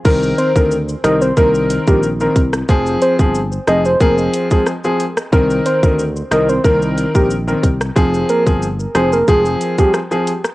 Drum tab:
CC |x---------------|----------------|----------------|----------------|
HH |--x---x---x---x-|--x---x---x---x-|--x---x---x---x-|--x---x---x---x-|
SH |xxxxxxxxxxxxxxxx|xxxxxxxxxxxxxxxx|xxxxxxxxxxxxxxxx|xxxxxxxxxxxxxxxx|
SD |------r--------r|------r-----r--r|------r--------r|------r-----r--r|
BD |o--o----o--o--o-|o--o----o--o----|o--o----o--o--o-|o--o----o--o----|